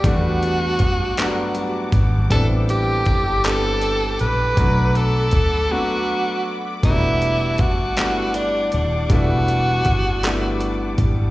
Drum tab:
HH |xxxxxx|xxxxxx|xxx---|xxxxxx|
CP |---x--|---x--|------|---x--|
BD |o-o--o|o-o---|o-o---|o-o---|

HH |xxxxxx|
CP |---x--|
BD |o-o--o|